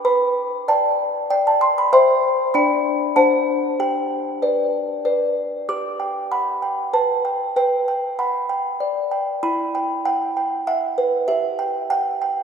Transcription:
0, 0, Header, 1, 2, 480
1, 0, Start_track
1, 0, Key_signature, 1, "major"
1, 0, Tempo, 624350
1, 38, Time_signature, 3, 2, 24, 8
1, 9556, End_track
2, 0, Start_track
2, 0, Title_t, "Music box"
2, 0, Program_c, 0, 10
2, 36, Note_on_c, 0, 71, 60
2, 37, Note_on_c, 0, 83, 95
2, 497, Note_off_c, 0, 83, 0
2, 502, Note_off_c, 0, 71, 0
2, 524, Note_on_c, 0, 74, 50
2, 526, Note_on_c, 0, 81, 90
2, 527, Note_on_c, 0, 79, 51
2, 969, Note_off_c, 0, 74, 0
2, 971, Note_off_c, 0, 79, 0
2, 982, Note_off_c, 0, 81, 0
2, 1003, Note_on_c, 0, 74, 50
2, 1003, Note_on_c, 0, 79, 95
2, 1119, Note_off_c, 0, 79, 0
2, 1131, Note_on_c, 0, 81, 96
2, 1239, Note_on_c, 0, 84, 115
2, 1243, Note_off_c, 0, 81, 0
2, 1356, Note_off_c, 0, 84, 0
2, 1369, Note_on_c, 0, 83, 96
2, 1445, Note_off_c, 0, 74, 0
2, 1481, Note_off_c, 0, 83, 0
2, 1482, Note_on_c, 0, 72, 76
2, 1482, Note_on_c, 0, 76, 52
2, 1483, Note_on_c, 0, 84, 115
2, 1486, Note_on_c, 0, 79, 52
2, 1923, Note_off_c, 0, 76, 0
2, 1925, Note_off_c, 0, 79, 0
2, 1936, Note_off_c, 0, 84, 0
2, 1940, Note_off_c, 0, 72, 0
2, 1954, Note_on_c, 0, 83, 105
2, 1958, Note_on_c, 0, 62, 75
2, 1958, Note_on_c, 0, 74, 52
2, 1961, Note_on_c, 0, 79, 52
2, 2402, Note_off_c, 0, 74, 0
2, 2403, Note_off_c, 0, 79, 0
2, 2411, Note_off_c, 0, 83, 0
2, 2418, Note_off_c, 0, 62, 0
2, 2429, Note_on_c, 0, 81, 94
2, 2430, Note_on_c, 0, 62, 72
2, 2433, Note_on_c, 0, 72, 50
2, 2433, Note_on_c, 0, 78, 50
2, 2881, Note_off_c, 0, 72, 0
2, 2881, Note_off_c, 0, 78, 0
2, 2891, Note_off_c, 0, 81, 0
2, 2896, Note_off_c, 0, 62, 0
2, 2919, Note_on_c, 0, 67, 57
2, 2921, Note_on_c, 0, 79, 80
2, 3387, Note_off_c, 0, 67, 0
2, 3400, Note_on_c, 0, 71, 38
2, 3403, Note_on_c, 0, 74, 45
2, 3856, Note_off_c, 0, 71, 0
2, 3857, Note_off_c, 0, 74, 0
2, 3859, Note_off_c, 0, 79, 0
2, 3882, Note_on_c, 0, 74, 43
2, 3884, Note_on_c, 0, 71, 38
2, 4339, Note_off_c, 0, 74, 0
2, 4340, Note_off_c, 0, 71, 0
2, 4373, Note_on_c, 0, 86, 88
2, 4374, Note_on_c, 0, 67, 56
2, 4610, Note_on_c, 0, 79, 43
2, 4835, Note_off_c, 0, 86, 0
2, 4855, Note_on_c, 0, 83, 74
2, 4856, Note_on_c, 0, 78, 37
2, 4996, Note_off_c, 0, 79, 0
2, 5093, Note_on_c, 0, 79, 45
2, 5094, Note_off_c, 0, 78, 0
2, 5315, Note_off_c, 0, 83, 0
2, 5331, Note_on_c, 0, 71, 40
2, 5333, Note_on_c, 0, 81, 76
2, 5476, Note_off_c, 0, 79, 0
2, 5572, Note_on_c, 0, 79, 50
2, 5716, Note_off_c, 0, 71, 0
2, 5783, Note_off_c, 0, 67, 0
2, 5793, Note_off_c, 0, 81, 0
2, 5809, Note_off_c, 0, 79, 0
2, 5814, Note_on_c, 0, 71, 55
2, 5818, Note_on_c, 0, 79, 84
2, 6049, Note_off_c, 0, 79, 0
2, 6059, Note_on_c, 0, 79, 42
2, 6295, Note_on_c, 0, 78, 36
2, 6295, Note_on_c, 0, 83, 76
2, 6441, Note_off_c, 0, 79, 0
2, 6530, Note_on_c, 0, 79, 47
2, 6535, Note_off_c, 0, 78, 0
2, 6769, Note_on_c, 0, 74, 44
2, 6915, Note_off_c, 0, 79, 0
2, 7007, Note_on_c, 0, 79, 50
2, 7153, Note_off_c, 0, 74, 0
2, 7221, Note_off_c, 0, 71, 0
2, 7221, Note_off_c, 0, 83, 0
2, 7248, Note_off_c, 0, 79, 0
2, 7249, Note_on_c, 0, 64, 56
2, 7249, Note_on_c, 0, 83, 81
2, 7494, Note_on_c, 0, 79, 47
2, 7708, Note_off_c, 0, 83, 0
2, 7720, Note_off_c, 0, 79, 0
2, 7730, Note_on_c, 0, 79, 81
2, 7731, Note_on_c, 0, 78, 42
2, 7961, Note_off_c, 0, 79, 0
2, 7968, Note_off_c, 0, 78, 0
2, 7970, Note_on_c, 0, 79, 51
2, 8205, Note_on_c, 0, 76, 43
2, 8205, Note_on_c, 0, 78, 82
2, 8351, Note_off_c, 0, 79, 0
2, 8440, Note_on_c, 0, 71, 55
2, 8587, Note_off_c, 0, 76, 0
2, 8652, Note_off_c, 0, 64, 0
2, 8664, Note_off_c, 0, 78, 0
2, 8671, Note_on_c, 0, 76, 90
2, 8673, Note_on_c, 0, 67, 64
2, 8681, Note_off_c, 0, 71, 0
2, 8910, Note_on_c, 0, 79, 55
2, 9135, Note_off_c, 0, 76, 0
2, 9141, Note_off_c, 0, 79, 0
2, 9150, Note_on_c, 0, 79, 90
2, 9153, Note_on_c, 0, 78, 44
2, 9382, Note_off_c, 0, 79, 0
2, 9391, Note_on_c, 0, 79, 53
2, 9395, Note_off_c, 0, 78, 0
2, 9556, Note_off_c, 0, 67, 0
2, 9556, Note_off_c, 0, 79, 0
2, 9556, End_track
0, 0, End_of_file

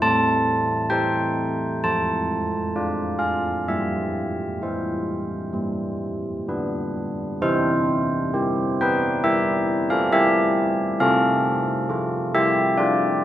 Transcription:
0, 0, Header, 1, 2, 480
1, 0, Start_track
1, 0, Key_signature, 0, "major"
1, 0, Tempo, 903614
1, 10, Time_signature, 4, 2, 24, 8
1, 1450, Tempo, 937500
1, 3850, Tempo, 887574
1, 7001, End_track
2, 0, Start_track
2, 0, Title_t, "Church bells"
2, 0, Program_c, 0, 14
2, 10, Note_on_c, 0, 81, 125
2, 12, Note_on_c, 0, 57, 74
2, 466, Note_off_c, 0, 81, 0
2, 472, Note_off_c, 0, 57, 0
2, 477, Note_on_c, 0, 79, 95
2, 482, Note_on_c, 0, 64, 52
2, 485, Note_on_c, 0, 72, 56
2, 940, Note_off_c, 0, 79, 0
2, 941, Note_off_c, 0, 64, 0
2, 942, Note_off_c, 0, 72, 0
2, 976, Note_on_c, 0, 81, 94
2, 979, Note_on_c, 0, 53, 54
2, 1443, Note_off_c, 0, 53, 0
2, 1465, Note_on_c, 0, 65, 50
2, 1465, Note_on_c, 0, 74, 54
2, 1674, Note_off_c, 0, 81, 0
2, 1685, Note_on_c, 0, 77, 83
2, 1916, Note_off_c, 0, 65, 0
2, 1916, Note_off_c, 0, 74, 0
2, 1918, Note_off_c, 0, 77, 0
2, 1938, Note_on_c, 0, 55, 60
2, 1938, Note_on_c, 0, 76, 76
2, 2401, Note_off_c, 0, 55, 0
2, 2417, Note_on_c, 0, 64, 48
2, 2422, Note_on_c, 0, 72, 51
2, 2874, Note_off_c, 0, 64, 0
2, 2877, Note_off_c, 0, 72, 0
2, 2885, Note_on_c, 0, 55, 58
2, 3354, Note_off_c, 0, 55, 0
2, 3356, Note_off_c, 0, 76, 0
2, 3372, Note_on_c, 0, 62, 47
2, 3375, Note_on_c, 0, 71, 50
2, 3827, Note_off_c, 0, 62, 0
2, 3829, Note_off_c, 0, 71, 0
2, 3849, Note_on_c, 0, 60, 71
2, 3852, Note_on_c, 0, 72, 111
2, 3855, Note_on_c, 0, 64, 80
2, 4321, Note_off_c, 0, 60, 0
2, 4345, Note_off_c, 0, 64, 0
2, 4348, Note_on_c, 0, 67, 65
2, 4351, Note_on_c, 0, 64, 55
2, 4558, Note_off_c, 0, 72, 0
2, 4603, Note_on_c, 0, 79, 105
2, 4610, Note_on_c, 0, 71, 82
2, 4818, Note_off_c, 0, 71, 0
2, 4822, Note_off_c, 0, 79, 0
2, 4830, Note_off_c, 0, 67, 0
2, 4835, Note_on_c, 0, 76, 102
2, 4836, Note_on_c, 0, 67, 70
2, 5164, Note_off_c, 0, 67, 0
2, 5171, Note_off_c, 0, 76, 0
2, 5194, Note_on_c, 0, 77, 93
2, 5199, Note_on_c, 0, 69, 68
2, 5299, Note_off_c, 0, 69, 0
2, 5304, Note_off_c, 0, 77, 0
2, 5314, Note_on_c, 0, 76, 115
2, 5317, Note_on_c, 0, 67, 84
2, 5758, Note_off_c, 0, 64, 0
2, 5761, Note_off_c, 0, 67, 0
2, 5762, Note_off_c, 0, 76, 0
2, 5789, Note_on_c, 0, 77, 122
2, 5792, Note_on_c, 0, 60, 78
2, 5796, Note_on_c, 0, 69, 99
2, 6246, Note_off_c, 0, 60, 0
2, 6265, Note_off_c, 0, 69, 0
2, 6271, Note_on_c, 0, 69, 62
2, 6273, Note_on_c, 0, 65, 58
2, 6478, Note_off_c, 0, 77, 0
2, 6515, Note_on_c, 0, 67, 86
2, 6515, Note_on_c, 0, 76, 117
2, 6726, Note_off_c, 0, 67, 0
2, 6733, Note_off_c, 0, 76, 0
2, 6748, Note_on_c, 0, 74, 96
2, 6750, Note_off_c, 0, 65, 0
2, 6757, Note_on_c, 0, 65, 71
2, 7001, Note_off_c, 0, 65, 0
2, 7001, Note_off_c, 0, 69, 0
2, 7001, Note_off_c, 0, 74, 0
2, 7001, End_track
0, 0, End_of_file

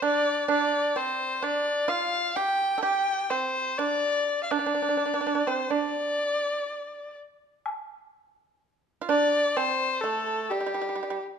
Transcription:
0, 0, Header, 1, 4, 480
1, 0, Start_track
1, 0, Tempo, 933126
1, 17, Time_signature, 4, 2, 24, 8
1, 1457, Tempo, 964630
1, 4337, Tempo, 949367
1, 5737, End_track
2, 0, Start_track
2, 0, Title_t, "Erhu"
2, 0, Program_c, 0, 110
2, 21, Note_on_c, 0, 74, 81
2, 241, Note_off_c, 0, 74, 0
2, 259, Note_on_c, 0, 74, 81
2, 499, Note_on_c, 0, 72, 75
2, 507, Note_off_c, 0, 74, 0
2, 736, Note_on_c, 0, 74, 84
2, 743, Note_off_c, 0, 72, 0
2, 973, Note_on_c, 0, 77, 81
2, 981, Note_off_c, 0, 74, 0
2, 1212, Note_on_c, 0, 79, 85
2, 1219, Note_off_c, 0, 77, 0
2, 1451, Note_off_c, 0, 79, 0
2, 1454, Note_on_c, 0, 79, 88
2, 1690, Note_on_c, 0, 72, 77
2, 1697, Note_off_c, 0, 79, 0
2, 1928, Note_on_c, 0, 74, 84
2, 1936, Note_off_c, 0, 72, 0
2, 2251, Note_off_c, 0, 74, 0
2, 2254, Note_on_c, 0, 77, 51
2, 2291, Note_on_c, 0, 74, 74
2, 2298, Note_off_c, 0, 77, 0
2, 2768, Note_on_c, 0, 72, 64
2, 2776, Note_off_c, 0, 74, 0
2, 2887, Note_on_c, 0, 74, 78
2, 2895, Note_off_c, 0, 72, 0
2, 3615, Note_off_c, 0, 74, 0
2, 4575, Note_on_c, 0, 74, 95
2, 4814, Note_on_c, 0, 72, 87
2, 4822, Note_off_c, 0, 74, 0
2, 5039, Note_on_c, 0, 69, 77
2, 5047, Note_off_c, 0, 72, 0
2, 5285, Note_on_c, 0, 67, 66
2, 5292, Note_off_c, 0, 69, 0
2, 5650, Note_off_c, 0, 67, 0
2, 5737, End_track
3, 0, Start_track
3, 0, Title_t, "Pipa"
3, 0, Program_c, 1, 105
3, 12, Note_on_c, 1, 62, 68
3, 236, Note_off_c, 1, 62, 0
3, 249, Note_on_c, 1, 62, 64
3, 474, Note_off_c, 1, 62, 0
3, 493, Note_on_c, 1, 60, 65
3, 717, Note_off_c, 1, 60, 0
3, 733, Note_on_c, 1, 62, 64
3, 956, Note_off_c, 1, 62, 0
3, 967, Note_on_c, 1, 65, 70
3, 1194, Note_off_c, 1, 65, 0
3, 1216, Note_on_c, 1, 67, 64
3, 1407, Note_off_c, 1, 67, 0
3, 1429, Note_on_c, 1, 69, 52
3, 1452, Note_off_c, 1, 69, 0
3, 1454, Note_on_c, 1, 67, 72
3, 1675, Note_off_c, 1, 67, 0
3, 1692, Note_on_c, 1, 60, 62
3, 1915, Note_off_c, 1, 60, 0
3, 1932, Note_on_c, 1, 62, 69
3, 2271, Note_off_c, 1, 62, 0
3, 2293, Note_on_c, 1, 62, 63
3, 2325, Note_off_c, 1, 62, 0
3, 2331, Note_on_c, 1, 62, 42
3, 2362, Note_off_c, 1, 62, 0
3, 2368, Note_on_c, 1, 62, 44
3, 2402, Note_off_c, 1, 62, 0
3, 2408, Note_on_c, 1, 62, 40
3, 2441, Note_off_c, 1, 62, 0
3, 2447, Note_on_c, 1, 62, 41
3, 2473, Note_off_c, 1, 62, 0
3, 2479, Note_on_c, 1, 62, 36
3, 2514, Note_off_c, 1, 62, 0
3, 2521, Note_on_c, 1, 62, 38
3, 2554, Note_off_c, 1, 62, 0
3, 2563, Note_on_c, 1, 62, 38
3, 2594, Note_off_c, 1, 62, 0
3, 2604, Note_on_c, 1, 62, 43
3, 2633, Note_off_c, 1, 62, 0
3, 2639, Note_on_c, 1, 62, 38
3, 2662, Note_off_c, 1, 62, 0
3, 2668, Note_on_c, 1, 62, 46
3, 2702, Note_off_c, 1, 62, 0
3, 2709, Note_on_c, 1, 62, 44
3, 2741, Note_off_c, 1, 62, 0
3, 2770, Note_on_c, 1, 60, 54
3, 2879, Note_off_c, 1, 60, 0
3, 2886, Note_on_c, 1, 62, 52
3, 3595, Note_off_c, 1, 62, 0
3, 4536, Note_on_c, 1, 65, 53
3, 4573, Note_off_c, 1, 65, 0
3, 4574, Note_on_c, 1, 62, 72
3, 4797, Note_off_c, 1, 62, 0
3, 4816, Note_on_c, 1, 60, 71
3, 5039, Note_off_c, 1, 60, 0
3, 5053, Note_on_c, 1, 57, 60
3, 5278, Note_off_c, 1, 57, 0
3, 5293, Note_on_c, 1, 55, 51
3, 5329, Note_off_c, 1, 55, 0
3, 5340, Note_on_c, 1, 55, 37
3, 5364, Note_off_c, 1, 55, 0
3, 5370, Note_on_c, 1, 55, 43
3, 5405, Note_off_c, 1, 55, 0
3, 5411, Note_on_c, 1, 55, 34
3, 5441, Note_off_c, 1, 55, 0
3, 5447, Note_on_c, 1, 55, 39
3, 5478, Note_off_c, 1, 55, 0
3, 5484, Note_on_c, 1, 55, 33
3, 5511, Note_off_c, 1, 55, 0
3, 5517, Note_on_c, 1, 55, 38
3, 5548, Note_off_c, 1, 55, 0
3, 5554, Note_on_c, 1, 55, 36
3, 5586, Note_off_c, 1, 55, 0
3, 5592, Note_on_c, 1, 55, 45
3, 5630, Note_off_c, 1, 55, 0
3, 5737, End_track
4, 0, Start_track
4, 0, Title_t, "Drums"
4, 3858, Note_on_c, 9, 76, 50
4, 3907, Note_off_c, 9, 76, 0
4, 4814, Note_on_c, 9, 76, 43
4, 4865, Note_off_c, 9, 76, 0
4, 5737, End_track
0, 0, End_of_file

